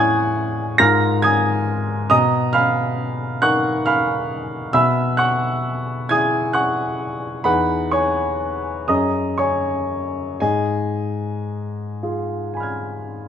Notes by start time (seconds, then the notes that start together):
Already playing: A2 E4 C#5 F#5 G#5 C#6 D#6 F#6 G#6
0.78 G#2 F4 A#4 A#5 F6 A#6
1.22 G#5 D#6 G#6
2.10 B2 D#5 A#5 D#6
2.53 F5 B5 F6
3.42 D#4 A#4 F#5 C#6 F#6
3.86 F5 B5 F6
4.73 B2 E5 B5 E6
5.17 F#5 C#6 F#6
6.09 E4 G#4 G#5 D#6 G#6
6.53 F#5 C#6 F#6
7.44 E2 D#4 G#4 B4 F#5 B5
7.91 C#5 G#5 C#6
8.88 F#2 C#4 G#4 D#5 A#5 D#6
9.38 C#5 G#5 C#6
10.40 G#2 G#4 D#5 G#5
12.03 F4 G#4
12.54 G#5 B5
12.60 F6 G#6